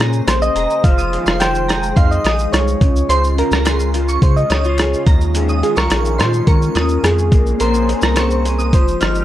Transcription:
Already playing: C#3 A#3 C#4 G#4 C5
0.00 A#2 G#4 A#5, cross-stick, clap
0.13 shaker
0.27 A#1 C5, cross-stick, clap, closed hi-hat, shaker
0.42 D#5, shaker
0.55 E1 G#4 A#5, closed hi-hat, shaker
0.70 shaker
0.84 F1 D#3 F3 G#3 F4 C5 F5, kick, closed hi-hat, shaker
0.98 D#6, shaker
1.13 G#4, closed hi-hat, shaker
1.26 F1 C6, cross-stick, shaker
1.40 C5 G5, cross-stick, clap, closed hi-hat, shaker
1.55 shaker
1.68 G#4 A#5, cross-stick, closed hi-hat, shaker
1.83 shaker
1.96 F2 D#4 F5 C6, kick, closed hi-hat, shaker
2.11 D#5, shaker
2.25 A#1 G#4 D#6, cross-stick, clap, closed hi-hat, shaker
2.39 shaker
2.52 C2 C#5, cross-stick, clap, closed hi-hat, shaker
2.68 shaker
2.81 C#2 C#3 C#4, kick, closed hi-hat, shaker
2.96 shaker
3.09 C#2 C#3 G#4 C5 C6, closed hi-hat, shaker
3.24 shaker
3.38 F4 A#4, closed hi-hat, shaker
3.51 C#2 A#5, cross-stick, shaker
3.66 G#4 C6, cross-stick, clap, closed hi-hat, shaker
3.79 shaker
3.94 F4, closed hi-hat, shaker
4.08 C#6, shaker
4.22 C#3 C5, kick, closed hi-hat, shaker
4.36 D#5, shaker
4.50 C#2 D#4 C#5 D#6, cross-stick, clap, closed hi-hat, shaker
4.64 F4, shaker
4.78 G#4, cross-stick, clap, closed hi-hat, shaker
4.93 shaker
5.06 D#2 D#3 G#3 C#4 A#5, kick, closed hi-hat, shaker
5.21 shaker
5.35 D#3 G#4, closed hi-hat, shaker
5.48 D#6, shaker
5.63 F4 G#4, closed hi-hat, shaker
5.76 C2 A#4 C#6, cross-stick, shaker
5.90 A#1 G#4, cross-stick, clap, closed hi-hat, shaker
6.05 shaker
6.18 A#2 F4 C5 C6, cross-stick, closed hi-hat, shaker
6.33 shaker
6.47 D#3 C#4 A#4 C#6, kick, closed hi-hat, shaker
6.62 shaker
6.75 D#2 F4 D#6, cross-stick, clap, closed hi-hat, shaker
6.89 shaker
7.03 F2 G#4, cross-stick, clap, closed hi-hat, shaker
7.18 shaker
7.31 A#1 A#3 C4 C#4 G#4, kick, closed hi-hat, shaker
7.46 shaker
7.60 A#1 A#3 A#4 C5 C6, closed hi-hat, shaker
7.74 shaker
7.88 G#4, closed hi-hat, shaker
8.02 C2 A#5, cross-stick, shaker
8.16 C5 C#6, cross-stick, clap, closed hi-hat, shaker
8.30 shaker
8.45 G#4, closed hi-hat, shaker
8.59 D#6, shaker
8.72 F1 F3 G#3 D#4 G4 C5, kick, closed hi-hat, shaker
8.88 shaker
9.01 G1 D#4 F6, cross-stick, clap, closed hi-hat, shaker
9.15 shaker

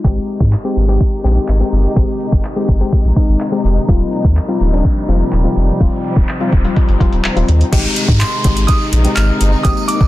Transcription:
0.04 G#1 C3 D#3 G#3 C4 D#4 G4, kick
0.40 G#2, kick
0.53 clap
0.64 G#3 C4 G4
0.77 G#1
0.88 G#3 C4 G4
1.01 kick
1.24 A#1 G#3 C4 G4
1.48 G#1, clap
1.60 G#3 C4 G4
1.73 G1
1.96 G#1 G#3 C4 G4, kick, closed hi-hat
2.09 closed hi-hat
2.20 closed hi-hat
2.32 G1, kick, closed hi-hat
2.45 clap, closed hi-hat
2.56 G#3 C4 G4, closed hi-hat
2.68 G1, kick, closed hi-hat
2.80 G#3 C4 G4, closed hi-hat
2.92 kick, closed hi-hat
3.04 A#1, closed hi-hat
3.16 G#3 C4 D#4, kick, closed hi-hat
3.29 G#1, closed hi-hat
3.40 clap, closed hi-hat
3.52 G#3 C4 G4, closed hi-hat
3.65 F1, closed hi-hat
3.77 closed hi-hat
3.88 D#1 F3 G3 A#3 C4 F4, kick, closed hi-hat, noise sweep
4.01 closed hi-hat
4.13 closed hi-hat
4.25 D#2, kick, closed hi-hat
4.37 clap, closed hi-hat
4.48 G3 C4 F4, closed hi-hat
4.61 D#1, closed hi-hat
4.72 G3 C4 D4, closed hi-hat
4.85 kick, closed hi-hat
4.97 closed hi-hat
5.08 F1 G3 C4 F4, closed hi-hat
5.21 closed hi-hat
5.32 D#1, clap, closed hi-hat
5.44 G3 C4 F4, closed hi-hat
5.56 F1, closed hi-hat
5.69 closed hi-hat
5.80 D#1 G3 C4 F4, kick, closed hi-hat
5.93 closed hi-hat
6.04 closed hi-hat
6.16 D#1, kick, closed hi-hat
6.29 clap, closed hi-hat
6.40 G3 C4 F4, closed hi-hat
6.52 D#1, kick, closed hi-hat
6.64 G3 C4 F4, closed hi-hat
6.76 kick, closed hi-hat
6.89 G1, closed hi-hat
7.00 F1 G3 C4 F4, kick, closed hi-hat
7.13 D#1, closed hi-hat
7.24 D#1, clap, closed hi-hat
7.36 D#1 G3 C4 F4, closed hi-hat
7.49 D#2, closed hi-hat
7.61 closed hi-hat
7.72 G#1 C3 D#3 G#3 C4 D#4 G4, kick, closed hi-hat, crash, tambourine, downlifter
7.85 tambourine
7.96 closed hi-hat, tambourine
8.08 G#2, kick, tambourine
8.19 C6, clap, closed hi-hat, tambourine
8.44 G#1 G#3 C4 D#4 G4, kick, closed hi-hat, tambourine
8.57 closed hi-hat
8.67 D#6, kick, closed hi-hat, tambourine
8.81 tambourine
8.93 A#1, closed hi-hat
9.04 G#3 C4 D#4 G4, closed hi-hat, tambourine
9.15 G#1 F6, clap, closed hi-hat, tambourine
9.41 G1, closed hi-hat, tambourine
9.52 tambourine
9.63 G#1 G#3 A#3 C4 D#4 G4 D#6, kick, closed hi-hat, tambourine
9.77 tambourine
9.88 D6, closed hi-hat, tambourine
10.01 G1, kick, tambourine

